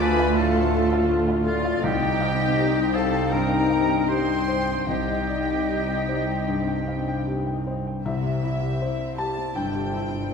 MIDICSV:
0, 0, Header, 1, 10, 480
1, 0, Start_track
1, 0, Tempo, 728155
1, 1208, Time_signature, 4, 2, 24, 8
1, 1208, Tempo, 750939
1, 2648, Tempo, 792602
1, 5048, Tempo, 754717
1, 6503, End_track
2, 0, Start_track
2, 0, Title_t, "Violin section"
2, 0, Program_c, 0, 48
2, 11, Note_on_c, 0, 83, 99
2, 247, Note_on_c, 0, 81, 80
2, 249, Note_off_c, 0, 83, 0
2, 724, Note_off_c, 0, 81, 0
2, 968, Note_on_c, 0, 77, 81
2, 1193, Note_off_c, 0, 77, 0
2, 1214, Note_on_c, 0, 79, 99
2, 1927, Note_off_c, 0, 79, 0
2, 1929, Note_on_c, 0, 81, 85
2, 2163, Note_on_c, 0, 82, 83
2, 2164, Note_off_c, 0, 81, 0
2, 2648, Note_off_c, 0, 82, 0
2, 2653, Note_on_c, 0, 84, 87
2, 3126, Note_on_c, 0, 79, 75
2, 3129, Note_off_c, 0, 84, 0
2, 4548, Note_off_c, 0, 79, 0
2, 5055, Note_on_c, 0, 72, 56
2, 6503, Note_off_c, 0, 72, 0
2, 6503, End_track
3, 0, Start_track
3, 0, Title_t, "Flute"
3, 0, Program_c, 1, 73
3, 9, Note_on_c, 1, 80, 87
3, 245, Note_on_c, 1, 77, 73
3, 255, Note_off_c, 1, 80, 0
3, 723, Note_off_c, 1, 77, 0
3, 962, Note_on_c, 1, 74, 77
3, 1205, Note_on_c, 1, 75, 86
3, 1215, Note_off_c, 1, 74, 0
3, 1919, Note_on_c, 1, 77, 76
3, 1929, Note_off_c, 1, 75, 0
3, 2156, Note_on_c, 1, 79, 73
3, 2166, Note_off_c, 1, 77, 0
3, 2637, Note_off_c, 1, 79, 0
3, 2640, Note_on_c, 1, 79, 72
3, 3125, Note_on_c, 1, 75, 68
3, 3134, Note_off_c, 1, 79, 0
3, 4572, Note_off_c, 1, 75, 0
3, 6503, End_track
4, 0, Start_track
4, 0, Title_t, "Felt piano"
4, 0, Program_c, 2, 0
4, 0, Control_c, 2, 64, 127
4, 0, Note_on_c, 2, 38, 65
4, 0, Note_on_c, 2, 65, 64
4, 0, Note_on_c, 2, 68, 59
4, 0, Note_on_c, 2, 69, 59
4, 0, Note_on_c, 2, 77, 59
4, 11, Note_off_c, 2, 69, 0
4, 11, Note_on_c, 2, 69, 56
4, 80, Note_off_c, 2, 77, 0
4, 128, Note_on_c, 2, 77, 58
4, 201, Note_off_c, 2, 69, 0
4, 219, Note_off_c, 2, 38, 0
4, 248, Note_on_c, 2, 45, 60
4, 319, Note_off_c, 2, 77, 0
4, 368, Note_on_c, 2, 77, 54
4, 439, Note_off_c, 2, 45, 0
4, 487, Note_on_c, 2, 76, 52
4, 558, Note_off_c, 2, 77, 0
4, 606, Note_off_c, 2, 76, 0
4, 608, Note_on_c, 2, 77, 60
4, 722, Note_off_c, 2, 65, 0
4, 722, Note_on_c, 2, 65, 52
4, 797, Note_off_c, 2, 77, 0
4, 844, Note_on_c, 2, 77, 54
4, 915, Note_off_c, 2, 65, 0
4, 963, Note_on_c, 2, 69, 53
4, 1037, Note_off_c, 2, 77, 0
4, 1088, Note_on_c, 2, 77, 51
4, 1158, Note_off_c, 2, 69, 0
4, 1209, Note_off_c, 2, 77, 0
4, 1209, Note_on_c, 2, 36, 64
4, 1220, Control_c, 2, 64, 0
4, 1223, Note_off_c, 2, 68, 0
4, 1325, Note_on_c, 2, 79, 53
4, 1340, Control_c, 2, 64, 127
4, 1447, Note_on_c, 2, 77, 47
4, 1517, Note_off_c, 2, 79, 0
4, 1563, Note_on_c, 2, 79, 53
4, 1566, Note_off_c, 2, 77, 0
4, 1681, Note_on_c, 2, 67, 54
4, 1756, Note_off_c, 2, 79, 0
4, 1804, Note_on_c, 2, 79, 49
4, 1874, Note_off_c, 2, 67, 0
4, 1920, Note_on_c, 2, 72, 44
4, 1995, Note_off_c, 2, 79, 0
4, 2043, Note_on_c, 2, 79, 46
4, 2112, Note_off_c, 2, 72, 0
4, 2137, Note_off_c, 2, 36, 0
4, 2160, Note_on_c, 2, 43, 50
4, 2233, Note_off_c, 2, 79, 0
4, 2280, Note_on_c, 2, 79, 45
4, 2353, Note_off_c, 2, 43, 0
4, 2402, Note_on_c, 2, 77, 37
4, 2475, Note_off_c, 2, 79, 0
4, 2524, Note_off_c, 2, 77, 0
4, 2526, Note_on_c, 2, 79, 48
4, 2648, Note_on_c, 2, 67, 42
4, 2720, Note_off_c, 2, 79, 0
4, 2768, Note_on_c, 2, 79, 44
4, 2838, Note_off_c, 2, 67, 0
4, 2889, Note_on_c, 2, 72, 44
4, 2958, Note_off_c, 2, 79, 0
4, 3009, Note_on_c, 2, 79, 42
4, 3080, Note_off_c, 2, 72, 0
4, 3129, Note_on_c, 2, 36, 41
4, 3139, Control_c, 2, 64, 0
4, 3201, Note_off_c, 2, 79, 0
4, 3252, Note_on_c, 2, 75, 39
4, 3262, Control_c, 2, 64, 127
4, 3372, Note_on_c, 2, 74, 40
4, 3444, Note_off_c, 2, 75, 0
4, 3492, Note_off_c, 2, 74, 0
4, 3498, Note_on_c, 2, 79, 44
4, 3618, Note_on_c, 2, 67, 37
4, 3687, Note_off_c, 2, 79, 0
4, 3737, Note_on_c, 2, 79, 41
4, 3807, Note_off_c, 2, 67, 0
4, 3860, Note_on_c, 2, 72, 36
4, 3927, Note_off_c, 2, 79, 0
4, 3978, Note_on_c, 2, 79, 37
4, 4048, Note_off_c, 2, 72, 0
4, 4070, Note_off_c, 2, 36, 0
4, 4096, Note_on_c, 2, 43, 44
4, 4167, Note_off_c, 2, 79, 0
4, 4217, Note_on_c, 2, 79, 41
4, 4287, Note_off_c, 2, 43, 0
4, 4339, Note_on_c, 2, 77, 31
4, 4407, Note_off_c, 2, 79, 0
4, 4456, Note_off_c, 2, 77, 0
4, 4459, Note_on_c, 2, 79, 39
4, 4579, Note_on_c, 2, 67, 36
4, 4647, Note_off_c, 2, 79, 0
4, 4696, Note_on_c, 2, 79, 36
4, 4768, Note_off_c, 2, 67, 0
4, 4818, Note_on_c, 2, 72, 42
4, 4886, Note_off_c, 2, 79, 0
4, 4939, Note_on_c, 2, 79, 36
4, 5005, Note_off_c, 2, 72, 0
4, 5051, Note_on_c, 2, 36, 52
4, 5052, Note_off_c, 2, 79, 0
4, 5054, Note_on_c, 2, 76, 71
4, 5061, Control_c, 2, 64, 0
4, 5166, Control_c, 2, 64, 127
4, 5295, Note_on_c, 2, 64, 46
4, 5538, Note_on_c, 2, 72, 47
4, 5675, Note_off_c, 2, 64, 0
4, 5745, Note_off_c, 2, 76, 0
4, 5770, Note_on_c, 2, 81, 77
4, 5772, Note_on_c, 2, 67, 42
4, 5914, Note_off_c, 2, 72, 0
4, 5981, Note_off_c, 2, 36, 0
4, 5990, Note_off_c, 2, 81, 0
4, 6008, Note_on_c, 2, 43, 51
4, 6008, Note_on_c, 2, 79, 67
4, 6151, Note_off_c, 2, 67, 0
4, 6248, Note_on_c, 2, 64, 42
4, 6392, Note_off_c, 2, 43, 0
4, 6503, Note_off_c, 2, 64, 0
4, 6503, Note_off_c, 2, 79, 0
4, 6503, End_track
5, 0, Start_track
5, 0, Title_t, "Violin section"
5, 0, Program_c, 3, 48
5, 11, Note_on_c, 3, 71, 92
5, 244, Note_off_c, 3, 71, 0
5, 249, Note_on_c, 3, 69, 66
5, 716, Note_off_c, 3, 69, 0
5, 967, Note_on_c, 3, 65, 73
5, 1192, Note_off_c, 3, 65, 0
5, 1202, Note_on_c, 3, 67, 91
5, 1920, Note_on_c, 3, 69, 77
5, 1921, Note_off_c, 3, 67, 0
5, 2153, Note_on_c, 3, 70, 70
5, 2160, Note_off_c, 3, 69, 0
5, 2634, Note_off_c, 3, 70, 0
5, 2645, Note_on_c, 3, 72, 73
5, 3115, Note_off_c, 3, 72, 0
5, 3122, Note_on_c, 3, 67, 59
5, 4571, Note_off_c, 3, 67, 0
5, 5047, Note_on_c, 3, 76, 75
5, 5742, Note_off_c, 3, 76, 0
5, 5767, Note_on_c, 3, 81, 70
5, 6004, Note_on_c, 3, 79, 60
5, 6005, Note_off_c, 3, 81, 0
5, 6503, Note_off_c, 3, 79, 0
5, 6503, End_track
6, 0, Start_track
6, 0, Title_t, "Oboe"
6, 0, Program_c, 4, 68
6, 9, Note_on_c, 4, 71, 86
6, 244, Note_on_c, 4, 69, 74
6, 254, Note_off_c, 4, 71, 0
6, 723, Note_off_c, 4, 69, 0
6, 969, Note_on_c, 4, 65, 80
6, 1209, Note_on_c, 4, 67, 91
6, 1219, Note_off_c, 4, 65, 0
6, 1922, Note_on_c, 4, 69, 75
6, 1931, Note_off_c, 4, 67, 0
6, 2164, Note_on_c, 4, 70, 73
6, 2173, Note_off_c, 4, 69, 0
6, 2648, Note_on_c, 4, 72, 69
6, 2657, Note_off_c, 4, 70, 0
6, 3127, Note_off_c, 4, 72, 0
6, 3132, Note_on_c, 4, 67, 61
6, 4552, Note_off_c, 4, 67, 0
6, 6503, End_track
7, 0, Start_track
7, 0, Title_t, "French horn section"
7, 0, Program_c, 5, 60
7, 0, Note_on_c, 5, 57, 85
7, 0, Note_on_c, 5, 65, 85
7, 1179, Note_off_c, 5, 57, 0
7, 1181, Note_off_c, 5, 65, 0
7, 1207, Note_on_c, 5, 55, 69
7, 1208, Note_on_c, 5, 63, 75
7, 3021, Note_off_c, 5, 55, 0
7, 3021, Note_off_c, 5, 63, 0
7, 3124, Note_on_c, 5, 55, 57
7, 3124, Note_on_c, 5, 63, 59
7, 4823, Note_off_c, 5, 55, 0
7, 4823, Note_off_c, 5, 63, 0
7, 6503, End_track
8, 0, Start_track
8, 0, Title_t, "Viola section"
8, 0, Program_c, 6, 48
8, 0, Note_on_c, 6, 57, 80
8, 0, Note_on_c, 6, 65, 80
8, 1182, Note_off_c, 6, 65, 0
8, 1183, Note_off_c, 6, 57, 0
8, 1206, Note_on_c, 6, 63, 71
8, 1207, Note_on_c, 6, 60, 74
8, 3101, Note_off_c, 6, 63, 0
8, 3102, Note_off_c, 6, 60, 0
8, 3127, Note_on_c, 6, 60, 47
8, 3128, Note_on_c, 6, 63, 50
8, 4900, Note_off_c, 6, 60, 0
8, 4901, Note_off_c, 6, 63, 0
8, 5051, Note_on_c, 6, 55, 51
8, 5052, Note_on_c, 6, 60, 45
8, 5162, Note_off_c, 6, 55, 0
8, 5166, Note_off_c, 6, 60, 0
8, 5173, Note_on_c, 6, 60, 47
8, 5292, Note_off_c, 6, 60, 0
8, 5293, Note_on_c, 6, 64, 50
8, 5412, Note_off_c, 6, 64, 0
8, 5413, Note_on_c, 6, 67, 46
8, 5529, Note_on_c, 6, 64, 47
8, 5531, Note_off_c, 6, 67, 0
8, 5646, Note_on_c, 6, 60, 54
8, 5648, Note_off_c, 6, 64, 0
8, 5765, Note_on_c, 6, 55, 52
8, 5766, Note_off_c, 6, 60, 0
8, 5885, Note_off_c, 6, 55, 0
8, 5886, Note_on_c, 6, 60, 50
8, 6005, Note_off_c, 6, 60, 0
8, 6006, Note_on_c, 6, 64, 54
8, 6117, Note_off_c, 6, 64, 0
8, 6127, Note_on_c, 6, 67, 48
8, 6246, Note_off_c, 6, 67, 0
8, 6246, Note_on_c, 6, 64, 54
8, 6367, Note_off_c, 6, 64, 0
8, 6367, Note_on_c, 6, 60, 51
8, 6488, Note_off_c, 6, 60, 0
8, 6503, End_track
9, 0, Start_track
9, 0, Title_t, "Cello section"
9, 0, Program_c, 7, 48
9, 0, Note_on_c, 7, 38, 90
9, 1182, Note_off_c, 7, 38, 0
9, 1209, Note_on_c, 7, 36, 70
9, 3103, Note_off_c, 7, 36, 0
9, 3124, Note_on_c, 7, 36, 61
9, 4899, Note_off_c, 7, 36, 0
9, 5053, Note_on_c, 7, 48, 70
9, 5453, Note_off_c, 7, 48, 0
9, 6008, Note_on_c, 7, 43, 64
9, 6408, Note_off_c, 7, 43, 0
9, 6503, End_track
10, 0, Start_track
10, 0, Title_t, "Double bass section"
10, 0, Program_c, 8, 48
10, 0, Note_on_c, 8, 38, 88
10, 1183, Note_off_c, 8, 38, 0
10, 1206, Note_on_c, 8, 36, 77
10, 3101, Note_off_c, 8, 36, 0
10, 3126, Note_on_c, 8, 36, 58
10, 4900, Note_off_c, 8, 36, 0
10, 5052, Note_on_c, 8, 36, 71
10, 5452, Note_off_c, 8, 36, 0
10, 6010, Note_on_c, 8, 31, 66
10, 6409, Note_off_c, 8, 31, 0
10, 6503, End_track
0, 0, End_of_file